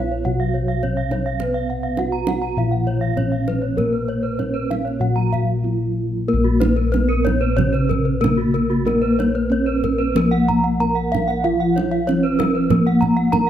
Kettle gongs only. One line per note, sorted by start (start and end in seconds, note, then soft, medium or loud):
0.00 0.24 A#1 medium
0.00 0.79 B4 medium
0.26 1.95 B2 medium
0.83 0.91 B3 soft
1.40 3.13 B4 medium
1.98 2.06 B3 soft
2.57 4.35 A#2 medium
3.16 3.24 B3 soft
3.77 5.60 A#4 medium
4.39 4.47 B3 soft
5.00 6.88 A#2 medium
5.64 5.72 B3 soft
6.28 8.18 A#4 medium
6.33 10.14 A#1 medium
6.93 7.01 B3 soft
8.22 8.30 B3 soft
8.86 10.76 A#4 medium
9.51 9.59 B3 soft
10.15 12.04 F3 medium
10.80 10.88 B3 soft
11.44 13.28 F4 medium
12.08 12.16 B3 soft
12.71 13.50 F3 medium
13.32 13.40 B3 soft